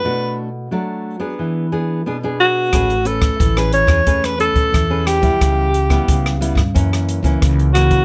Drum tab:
HH |----------------|xxxxxxxxxxxxx-xx|x-x-x-x-xxxxxxxx|
SD |----------------|r--r-r-r-r--r-r-|r--r-r-r-r--r-r-|
BD |----------------|o--oo--oo--oo--o|o--oo--oo--oo--o|